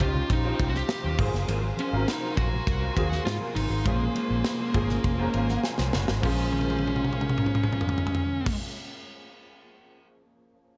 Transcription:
Already playing: string section C5 F5 G5 A#5
0.00 fingered electric bass C#2, grand piano F3 C4 C#4 D#4 G4, clean electric guitar C#4 F4 G4 C5, lead electric guitar F4, kick, ride, low conga
0.15 muted clean electric guitar stroke, low conga
0.29 fingered electric bass A#1, lead electric guitar D#4, muted clean electric guitar stroke, kick, ride, muted conga
0.44 grand piano F3 C4 C#4 D#4 F4, clean electric guitar C#4 F4 G4 C5, muted conga
0.59 fingered electric bass C2, clean electric guitar C#4 F4 G4 C5, kick, ride
0.69 lead electric guitar F#4
0.74 lead electric guitar G4, muted clean electric guitar stroke, snare, high conga
0.88 muted clean electric guitar stroke, snare, ride, muted conga
1.03 fingered electric bass D#2, clean electric guitar C#4 F4 G4 C5, high conga
1.18 fingered electric bass G#1, clean electric guitar F#3 C4 F4 C5, grand piano F#3 A#3 C4 F4 G#4, string section A#4 G#5 C6, kick, crash, low conga
1.32 fingered electric bass F#1, muted clean electric guitar stroke, snare
1.47 fingered electric bass G#1, clean electric guitar F#3 C4 F4 A#4, hi-hat pedal, ride, muted conga
1.62 muted clean electric guitar stroke, muted conga
1.77 clean electric guitar F#3 C4 F4 C5, lead electric guitar C#4, ride, high conga
1.92 fingered electric bass G#1, grand piano F#3 A#3 C4 A#4 F5, clean electric guitar F#3 C4 F4 A#4
2.08 lead electric guitar D#4, snare, ride
2.21 clean electric guitar F#3 C4 F4 A#4
2.36 fingered electric bass A#1, clean electric guitar F#3 C4 F4 A#4, lead electric guitar F#4, kick, ride, low conga
2.51 muted clean electric guitar stroke, low conga
2.67 fingered electric bass C2, muted clean electric guitar stroke, kick, ride, muted conga
2.80 clean electric guitar F#3 C4 F4 A#4
2.95 fingered electric bass D#2, clean electric guitar F#3 C4 F4 A#4, grand piano F#3 A#3 C4 F4 G#4, kick, ride
3.10 muted clean electric guitar stroke, snare, high conga
3.25 fingered electric bass G#2, lead electric guitar F4, muted clean electric guitar stroke, snare, ride
3.40 clean electric guitar F#3 C4 F4 A#4, muted conga, high conga
3.55 fingered electric bass G#1, clean electric guitar F#3 C4 F4 A#4, lead electric guitar D#4, open hi-hat, ride, low conga
3.70 fingered electric bass G#1, muted clean electric guitar stroke
3.84 fingered electric bass A#1, grand piano F3 A#3 C4 C#4 G#4, clean electric guitar G#3 C#4 F4 C5, lead electric guitar A#3, string section A#4 C5 G#5, kick, hi-hat pedal, ride
3.98 muted clean electric guitar stroke, muted conga
4.13 clean electric guitar G#3 C#4 F4 C5, ride, high conga
4.29 fingered electric bass A#1, clean electric guitar G#3 C#4 F4 C5
4.44 snare, ride, muted conga
4.59 clean electric guitar G#3 C#4 F4 C5, muted conga
4.73 fingered electric bass G#1, grand piano F3 A#3 C4 C#4 G#4, clean electric guitar G#3 C#4 F4 C5, kick, ride, low conga
4.89 muted clean electric guitar stroke, snare, low conga
5.04 fingered electric bass F1, muted clean electric guitar stroke, kick, ride, muted conga
5.18 grand piano F3 A#3 C4 C#4 A#4, clean electric guitar G#3 C#4 F4 C5, muted conga
5.34 fingered electric bass G#1, clean electric guitar G#3 C#4 F4 C5, grand piano F5, ride
5.49 grand piano F#5, muted clean electric guitar stroke, snare, high conga
5.63 grand piano G#5, muted clean electric guitar stroke, snare, muted conga
5.78 fingered electric bass C2, clean electric guitar G#3 C#4 F4 C5, grand piano A#5, snare, high conga
5.93 fingered electric bass F#1, clean electric guitar G#3 C#4 F4 C#5, snare, low conga
6.08 fingered electric bass G#1, muted clean electric guitar stroke, snare
6.20 fingered electric bass A#1, grand piano F3 A#3 C5, clean electric guitar G#3 C#4, string section C#4 G#4 A#4 C5 F5, kick, crash
6.24 grand piano C#4 G#4, lead electric guitar C#4, clean electric guitar F4 C5, high conga
6.53 high tom
6.61 high tom
6.70 high tom
6.79 high tom
6.88 high tom
6.96 mid tom
7.05 mid tom
7.13 mid tom
7.21 mid tom
7.29 mid tom
7.38 mid tom
7.46 mid tom
7.55 mid tom
7.63 mid tom
7.73 mid tom
7.81 floor tom
7.89 floor tom
7.98 floor tom
8.07 floor tom
8.15 floor tom
8.46 kick, crash

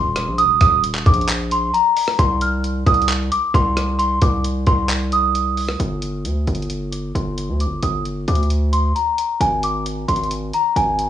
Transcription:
Already playing: 808-style bass D#1, celesta C6
0.16 cross-stick, closed hi-hat
0.27 808-style bass A#1
0.38 celesta D#6, closed hi-hat
0.44 808-style bass D#1
0.61 808-style bass D#1, celesta D#6, kick, cross-stick, closed hi-hat
0.84 closed hi-hat
0.95 clap
1.06 808-style bass A#1, celesta D6, kick, closed hi-hat
1.14 closed hi-hat
1.21 closed hi-hat
1.29 clap, closed hi-hat
1.51 celesta C6, closed hi-hat
1.74 celesta A#5, closed hi-hat
1.97 open hi-hat
2.08 cross-stick
2.19 808-style bass C2, celesta C6, kick, closed hi-hat
2.41 celesta F6, closed hi-hat
2.64 closed hi-hat
2.86 808-style bass C2, celesta D#6, kick, closed hi-hat
2.94 closed hi-hat
3.02 closed hi-hat
3.09 clap, closed hi-hat
3.32 celesta D6, closed hi-hat
3.54 808-style bass C2, celesta C6, kick, closed hi-hat
3.77 cross-stick, closed hi-hat
3.99 celesta C6, closed hi-hat
4.22 808-style bass C2, celesta D6, kick, closed hi-hat
4.45 closed hi-hat
4.67 808-style bass C2, celesta C6, kick, closed hi-hat
4.89 clap, closed hi-hat
5.12 celesta D#6, closed hi-hat
5.35 closed hi-hat
5.57 open hi-hat
5.68 cross-stick
5.80 808-style bass G1, celesta D6, closed hi-hat
6.02 closed hi-hat
6.25 808-style bass D2, closed hi-hat
6.47 808-style bass G1, closed hi-hat
6.55 closed hi-hat
6.62 closed hi-hat
6.70 closed hi-hat
6.92 celesta D6, closed hi-hat
7.15 808-style bass G1, celesta C6, closed hi-hat
7.38 closed hi-hat
7.49 808-style bass D2
7.60 celesta D6, closed hi-hat
7.66 808-style bass G1
7.83 808-style bass G1, celesta D#6, closed hi-hat
8.05 closed hi-hat
8.28 808-style bass D2, celesta D6, closed hi-hat
8.35 closed hi-hat
8.43 closed hi-hat
8.50 closed hi-hat
8.73 celesta C6, closed hi-hat
8.96 celesta A#5, closed hi-hat
9.18 closed hi-hat
9.41 808-style bass G#1, celesta G#5, closed hi-hat
9.63 celesta D6, closed hi-hat
9.86 closed hi-hat
10.08 808-style bass G#1, celesta C6, closed hi-hat
10.16 closed hi-hat
10.23 closed hi-hat
10.31 closed hi-hat
10.53 celesta A#5, closed hi-hat
10.76 808-style bass G#1, celesta G#5, closed hi-hat
10.99 closed hi-hat

